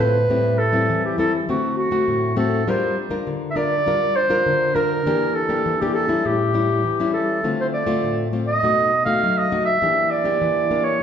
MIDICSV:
0, 0, Header, 1, 3, 480
1, 0, Start_track
1, 0, Tempo, 595238
1, 241, Time_signature, 4, 2, 24, 8
1, 8894, End_track
2, 0, Start_track
2, 0, Title_t, "Clarinet"
2, 0, Program_c, 0, 71
2, 0, Note_on_c, 0, 71, 97
2, 472, Note_on_c, 0, 69, 84
2, 484, Note_off_c, 0, 71, 0
2, 836, Note_off_c, 0, 69, 0
2, 846, Note_on_c, 0, 67, 74
2, 952, Note_off_c, 0, 67, 0
2, 956, Note_on_c, 0, 69, 84
2, 1065, Note_off_c, 0, 69, 0
2, 1206, Note_on_c, 0, 66, 81
2, 1426, Note_off_c, 0, 66, 0
2, 1435, Note_on_c, 0, 66, 84
2, 1885, Note_off_c, 0, 66, 0
2, 1917, Note_on_c, 0, 69, 81
2, 2168, Note_on_c, 0, 72, 84
2, 2180, Note_off_c, 0, 69, 0
2, 2404, Note_off_c, 0, 72, 0
2, 2826, Note_on_c, 0, 76, 75
2, 2872, Note_on_c, 0, 74, 110
2, 2884, Note_off_c, 0, 76, 0
2, 3356, Note_on_c, 0, 72, 102
2, 3368, Note_off_c, 0, 74, 0
2, 3831, Note_on_c, 0, 70, 96
2, 3843, Note_off_c, 0, 72, 0
2, 4312, Note_on_c, 0, 69, 86
2, 4324, Note_off_c, 0, 70, 0
2, 4686, Note_on_c, 0, 67, 76
2, 4698, Note_off_c, 0, 69, 0
2, 4788, Note_off_c, 0, 67, 0
2, 4792, Note_on_c, 0, 69, 89
2, 5044, Note_on_c, 0, 67, 89
2, 5056, Note_off_c, 0, 69, 0
2, 5749, Note_off_c, 0, 67, 0
2, 5754, Note_on_c, 0, 69, 80
2, 6092, Note_off_c, 0, 69, 0
2, 6133, Note_on_c, 0, 72, 76
2, 6184, Note_off_c, 0, 72, 0
2, 6238, Note_on_c, 0, 74, 81
2, 6594, Note_off_c, 0, 74, 0
2, 6829, Note_on_c, 0, 75, 96
2, 7283, Note_off_c, 0, 75, 0
2, 7300, Note_on_c, 0, 77, 85
2, 7562, Note_on_c, 0, 75, 90
2, 7574, Note_off_c, 0, 77, 0
2, 7777, Note_off_c, 0, 75, 0
2, 7782, Note_on_c, 0, 76, 94
2, 8148, Note_on_c, 0, 74, 89
2, 8160, Note_off_c, 0, 76, 0
2, 8738, Note_on_c, 0, 73, 88
2, 8750, Note_off_c, 0, 74, 0
2, 8894, Note_off_c, 0, 73, 0
2, 8894, End_track
3, 0, Start_track
3, 0, Title_t, "Nylon-string guitar"
3, 0, Program_c, 1, 24
3, 0, Note_on_c, 1, 45, 69
3, 0, Note_on_c, 1, 60, 52
3, 0, Note_on_c, 1, 65, 58
3, 1, Note_on_c, 1, 69, 63
3, 138, Note_off_c, 1, 60, 0
3, 140, Note_off_c, 1, 65, 0
3, 142, Note_off_c, 1, 69, 0
3, 219, Note_off_c, 1, 45, 0
3, 240, Note_on_c, 1, 45, 71
3, 242, Note_on_c, 1, 55, 57
3, 245, Note_on_c, 1, 60, 54
3, 249, Note_on_c, 1, 64, 65
3, 466, Note_off_c, 1, 55, 0
3, 468, Note_off_c, 1, 60, 0
3, 470, Note_off_c, 1, 64, 0
3, 586, Note_on_c, 1, 55, 61
3, 590, Note_on_c, 1, 60, 59
3, 596, Note_on_c, 1, 64, 63
3, 697, Note_off_c, 1, 45, 0
3, 723, Note_on_c, 1, 52, 65
3, 915, Note_off_c, 1, 55, 0
3, 916, Note_off_c, 1, 60, 0
3, 919, Note_off_c, 1, 64, 0
3, 952, Note_on_c, 1, 55, 60
3, 958, Note_on_c, 1, 60, 60
3, 961, Note_on_c, 1, 64, 60
3, 1098, Note_off_c, 1, 55, 0
3, 1099, Note_off_c, 1, 60, 0
3, 1102, Note_off_c, 1, 64, 0
3, 1177, Note_off_c, 1, 52, 0
3, 1198, Note_on_c, 1, 50, 67
3, 1200, Note_on_c, 1, 57, 53
3, 1202, Note_on_c, 1, 60, 52
3, 1208, Note_on_c, 1, 66, 55
3, 1521, Note_off_c, 1, 57, 0
3, 1523, Note_off_c, 1, 60, 0
3, 1524, Note_off_c, 1, 66, 0
3, 1542, Note_on_c, 1, 57, 62
3, 1545, Note_on_c, 1, 60, 57
3, 1549, Note_on_c, 1, 66, 65
3, 1655, Note_off_c, 1, 50, 0
3, 1675, Note_on_c, 1, 45, 63
3, 1872, Note_off_c, 1, 57, 0
3, 1874, Note_off_c, 1, 60, 0
3, 1876, Note_off_c, 1, 66, 0
3, 1907, Note_on_c, 1, 57, 60
3, 1911, Note_on_c, 1, 60, 60
3, 1916, Note_on_c, 1, 66, 63
3, 2115, Note_off_c, 1, 57, 0
3, 2117, Note_off_c, 1, 60, 0
3, 2119, Note_off_c, 1, 66, 0
3, 2133, Note_off_c, 1, 45, 0
3, 2158, Note_on_c, 1, 55, 70
3, 2161, Note_on_c, 1, 62, 56
3, 2162, Note_on_c, 1, 65, 54
3, 2166, Note_on_c, 1, 70, 64
3, 2385, Note_off_c, 1, 62, 0
3, 2386, Note_off_c, 1, 65, 0
3, 2387, Note_off_c, 1, 70, 0
3, 2502, Note_on_c, 1, 62, 59
3, 2506, Note_on_c, 1, 65, 61
3, 2507, Note_on_c, 1, 70, 61
3, 2615, Note_off_c, 1, 55, 0
3, 2637, Note_on_c, 1, 50, 71
3, 2833, Note_off_c, 1, 62, 0
3, 2834, Note_off_c, 1, 65, 0
3, 2835, Note_off_c, 1, 70, 0
3, 2869, Note_on_c, 1, 62, 56
3, 2873, Note_on_c, 1, 65, 55
3, 2877, Note_on_c, 1, 70, 61
3, 3015, Note_off_c, 1, 62, 0
3, 3017, Note_off_c, 1, 65, 0
3, 3019, Note_off_c, 1, 70, 0
3, 3094, Note_off_c, 1, 50, 0
3, 3115, Note_on_c, 1, 55, 69
3, 3119, Note_on_c, 1, 62, 52
3, 3124, Note_on_c, 1, 70, 65
3, 3125, Note_on_c, 1, 65, 56
3, 3344, Note_off_c, 1, 62, 0
3, 3345, Note_off_c, 1, 65, 0
3, 3347, Note_off_c, 1, 70, 0
3, 3465, Note_on_c, 1, 62, 65
3, 3468, Note_on_c, 1, 65, 66
3, 3473, Note_on_c, 1, 70, 67
3, 3574, Note_off_c, 1, 55, 0
3, 3598, Note_on_c, 1, 50, 65
3, 3793, Note_off_c, 1, 62, 0
3, 3796, Note_off_c, 1, 65, 0
3, 3797, Note_off_c, 1, 70, 0
3, 3829, Note_on_c, 1, 62, 62
3, 3836, Note_on_c, 1, 65, 55
3, 3837, Note_on_c, 1, 70, 62
3, 4036, Note_off_c, 1, 62, 0
3, 4038, Note_off_c, 1, 65, 0
3, 4040, Note_off_c, 1, 70, 0
3, 4054, Note_off_c, 1, 50, 0
3, 4083, Note_on_c, 1, 52, 74
3, 4084, Note_on_c, 1, 58, 52
3, 4087, Note_on_c, 1, 62, 63
3, 4092, Note_on_c, 1, 67, 66
3, 4307, Note_off_c, 1, 58, 0
3, 4308, Note_off_c, 1, 62, 0
3, 4310, Note_off_c, 1, 67, 0
3, 4427, Note_on_c, 1, 58, 55
3, 4430, Note_on_c, 1, 62, 57
3, 4435, Note_on_c, 1, 67, 67
3, 4537, Note_off_c, 1, 52, 0
3, 4563, Note_on_c, 1, 52, 67
3, 4634, Note_off_c, 1, 58, 0
3, 4636, Note_off_c, 1, 62, 0
3, 4638, Note_off_c, 1, 67, 0
3, 4690, Note_on_c, 1, 58, 62
3, 4695, Note_on_c, 1, 62, 60
3, 4696, Note_on_c, 1, 67, 60
3, 4886, Note_off_c, 1, 58, 0
3, 4887, Note_off_c, 1, 62, 0
3, 4889, Note_off_c, 1, 67, 0
3, 4907, Note_on_c, 1, 55, 59
3, 4910, Note_on_c, 1, 61, 54
3, 4913, Note_on_c, 1, 64, 62
3, 5017, Note_off_c, 1, 52, 0
3, 5041, Note_on_c, 1, 45, 64
3, 5235, Note_off_c, 1, 55, 0
3, 5236, Note_off_c, 1, 61, 0
3, 5237, Note_off_c, 1, 64, 0
3, 5274, Note_on_c, 1, 55, 57
3, 5278, Note_on_c, 1, 61, 56
3, 5281, Note_on_c, 1, 64, 58
3, 5496, Note_off_c, 1, 45, 0
3, 5502, Note_off_c, 1, 55, 0
3, 5503, Note_off_c, 1, 61, 0
3, 5505, Note_off_c, 1, 64, 0
3, 5516, Note_on_c, 1, 52, 64
3, 5644, Note_on_c, 1, 55, 63
3, 5648, Note_on_c, 1, 61, 62
3, 5652, Note_on_c, 1, 64, 68
3, 5963, Note_off_c, 1, 55, 0
3, 5966, Note_off_c, 1, 61, 0
3, 5967, Note_off_c, 1, 64, 0
3, 5974, Note_off_c, 1, 52, 0
3, 5999, Note_on_c, 1, 50, 69
3, 6003, Note_on_c, 1, 57, 53
3, 6003, Note_on_c, 1, 60, 53
3, 6008, Note_on_c, 1, 65, 59
3, 6322, Note_off_c, 1, 57, 0
3, 6324, Note_off_c, 1, 60, 0
3, 6325, Note_off_c, 1, 65, 0
3, 6342, Note_on_c, 1, 57, 59
3, 6346, Note_on_c, 1, 60, 53
3, 6349, Note_on_c, 1, 65, 69
3, 6456, Note_off_c, 1, 50, 0
3, 6479, Note_on_c, 1, 45, 67
3, 6673, Note_off_c, 1, 57, 0
3, 6675, Note_off_c, 1, 60, 0
3, 6677, Note_off_c, 1, 65, 0
3, 6716, Note_on_c, 1, 57, 50
3, 6720, Note_on_c, 1, 60, 51
3, 6722, Note_on_c, 1, 65, 57
3, 6859, Note_off_c, 1, 57, 0
3, 6861, Note_off_c, 1, 60, 0
3, 6862, Note_off_c, 1, 65, 0
3, 6936, Note_off_c, 1, 45, 0
3, 6961, Note_on_c, 1, 47, 64
3, 6962, Note_on_c, 1, 57, 54
3, 6965, Note_on_c, 1, 63, 54
3, 6970, Note_on_c, 1, 66, 60
3, 7186, Note_off_c, 1, 57, 0
3, 7188, Note_off_c, 1, 63, 0
3, 7190, Note_off_c, 1, 66, 0
3, 7307, Note_on_c, 1, 57, 60
3, 7312, Note_on_c, 1, 63, 62
3, 7313, Note_on_c, 1, 66, 64
3, 7418, Note_off_c, 1, 47, 0
3, 7444, Note_on_c, 1, 54, 68
3, 7636, Note_off_c, 1, 57, 0
3, 7638, Note_off_c, 1, 63, 0
3, 7639, Note_off_c, 1, 66, 0
3, 7674, Note_on_c, 1, 57, 60
3, 7679, Note_on_c, 1, 63, 58
3, 7679, Note_on_c, 1, 66, 67
3, 7820, Note_off_c, 1, 57, 0
3, 7821, Note_off_c, 1, 63, 0
3, 7822, Note_off_c, 1, 66, 0
3, 7900, Note_off_c, 1, 54, 0
3, 7918, Note_on_c, 1, 58, 61
3, 7919, Note_on_c, 1, 52, 70
3, 7922, Note_on_c, 1, 62, 53
3, 7927, Note_on_c, 1, 67, 63
3, 8242, Note_off_c, 1, 58, 0
3, 8245, Note_off_c, 1, 62, 0
3, 8247, Note_off_c, 1, 67, 0
3, 8262, Note_on_c, 1, 58, 65
3, 8265, Note_on_c, 1, 62, 59
3, 8269, Note_on_c, 1, 67, 66
3, 8378, Note_off_c, 1, 52, 0
3, 8399, Note_on_c, 1, 52, 65
3, 8595, Note_off_c, 1, 58, 0
3, 8596, Note_off_c, 1, 62, 0
3, 8598, Note_off_c, 1, 67, 0
3, 8635, Note_on_c, 1, 58, 53
3, 8638, Note_on_c, 1, 62, 59
3, 8641, Note_on_c, 1, 67, 62
3, 8842, Note_off_c, 1, 58, 0
3, 8844, Note_off_c, 1, 62, 0
3, 8844, Note_off_c, 1, 67, 0
3, 8859, Note_off_c, 1, 52, 0
3, 8894, End_track
0, 0, End_of_file